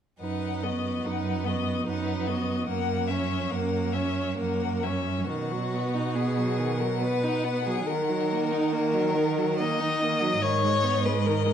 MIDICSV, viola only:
0, 0, Header, 1, 2, 480
1, 0, Start_track
1, 0, Key_signature, 5, "major"
1, 0, Tempo, 826446
1, 119, Time_signature, 3, 2, 24, 8
1, 2036, Tempo, 882353
1, 3476, Tempo, 857143
1, 5396, Tempo, 834492
1, 6518, End_track
2, 0, Start_track
2, 0, Title_t, "Viola"
2, 0, Program_c, 0, 41
2, 120, Note_on_c, 0, 63, 28
2, 366, Note_on_c, 0, 59, 26
2, 374, Note_off_c, 0, 63, 0
2, 615, Note_on_c, 0, 63, 28
2, 624, Note_off_c, 0, 59, 0
2, 841, Note_on_c, 0, 59, 33
2, 850, Note_off_c, 0, 63, 0
2, 1081, Note_off_c, 0, 59, 0
2, 1084, Note_on_c, 0, 63, 37
2, 1317, Note_on_c, 0, 59, 40
2, 1326, Note_off_c, 0, 63, 0
2, 1553, Note_off_c, 0, 59, 0
2, 1557, Note_on_c, 0, 58, 38
2, 1798, Note_on_c, 0, 61, 37
2, 1807, Note_off_c, 0, 58, 0
2, 2040, Note_on_c, 0, 58, 33
2, 2048, Note_off_c, 0, 61, 0
2, 2273, Note_on_c, 0, 61, 36
2, 2281, Note_off_c, 0, 58, 0
2, 2508, Note_off_c, 0, 61, 0
2, 2511, Note_on_c, 0, 58, 35
2, 2759, Note_on_c, 0, 61, 32
2, 2767, Note_off_c, 0, 58, 0
2, 3004, Note_off_c, 0, 61, 0
2, 3007, Note_on_c, 0, 51, 35
2, 3128, Note_on_c, 0, 54, 30
2, 3136, Note_off_c, 0, 51, 0
2, 3250, Note_on_c, 0, 59, 32
2, 3258, Note_off_c, 0, 54, 0
2, 3361, Note_on_c, 0, 63, 32
2, 3369, Note_off_c, 0, 59, 0
2, 3478, Note_on_c, 0, 59, 31
2, 3487, Note_off_c, 0, 63, 0
2, 3599, Note_on_c, 0, 54, 32
2, 3608, Note_off_c, 0, 59, 0
2, 3719, Note_on_c, 0, 51, 33
2, 3727, Note_off_c, 0, 54, 0
2, 3841, Note_on_c, 0, 54, 31
2, 3849, Note_off_c, 0, 51, 0
2, 3956, Note_on_c, 0, 59, 36
2, 3965, Note_off_c, 0, 54, 0
2, 4081, Note_on_c, 0, 63, 38
2, 4090, Note_off_c, 0, 59, 0
2, 4199, Note_on_c, 0, 59, 37
2, 4208, Note_off_c, 0, 63, 0
2, 4324, Note_on_c, 0, 54, 33
2, 4332, Note_off_c, 0, 59, 0
2, 4438, Note_off_c, 0, 54, 0
2, 4443, Note_on_c, 0, 51, 40
2, 4562, Note_on_c, 0, 54, 39
2, 4571, Note_off_c, 0, 51, 0
2, 4688, Note_on_c, 0, 58, 43
2, 4697, Note_off_c, 0, 54, 0
2, 4803, Note_on_c, 0, 63, 38
2, 4811, Note_off_c, 0, 58, 0
2, 4915, Note_on_c, 0, 58, 43
2, 4923, Note_off_c, 0, 63, 0
2, 5033, Note_on_c, 0, 54, 42
2, 5042, Note_off_c, 0, 58, 0
2, 5157, Note_on_c, 0, 51, 45
2, 5165, Note_off_c, 0, 54, 0
2, 5283, Note_on_c, 0, 54, 41
2, 5292, Note_off_c, 0, 51, 0
2, 5405, Note_on_c, 0, 58, 47
2, 5413, Note_off_c, 0, 54, 0
2, 5523, Note_on_c, 0, 63, 44
2, 5531, Note_off_c, 0, 58, 0
2, 5644, Note_on_c, 0, 58, 45
2, 5653, Note_off_c, 0, 63, 0
2, 5758, Note_on_c, 0, 54, 46
2, 5767, Note_off_c, 0, 58, 0
2, 5877, Note_off_c, 0, 54, 0
2, 5882, Note_on_c, 0, 51, 45
2, 6005, Note_on_c, 0, 56, 41
2, 6014, Note_off_c, 0, 51, 0
2, 6118, Note_on_c, 0, 59, 44
2, 6126, Note_off_c, 0, 56, 0
2, 6246, Note_on_c, 0, 56, 40
2, 6255, Note_off_c, 0, 59, 0
2, 6364, Note_on_c, 0, 51, 37
2, 6372, Note_off_c, 0, 56, 0
2, 6477, Note_on_c, 0, 56, 41
2, 6486, Note_off_c, 0, 51, 0
2, 6518, Note_off_c, 0, 56, 0
2, 6518, End_track
0, 0, End_of_file